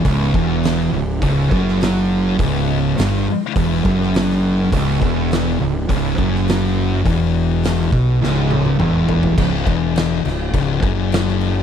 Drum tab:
CC |----------------|----------------|----------------|----------------|
HH |o---o---o---o---|o---o---o---o---|o---o---o---o---|o---o-----------|
SD |----o------oo---|----o------ooo--|----o------ooo--|----o---o-------|
T1 |----------------|----------------|----------------|----------oo----|
T2 |----------------|----------------|----------------|------------o---|
FT |----------------|----------------|----------------|--------------oo|
BD |o-o-----o-o-----|o-------o-o-----|o-o-----o-o-----|o-----o---------|

CC |x-x-x-x-x-x-x-x-|
HH |----------------|
SD |----o-o-----oo--|
T1 |----------------|
T2 |----------------|
FT |----------------|
BD |o-o-----o-o-----|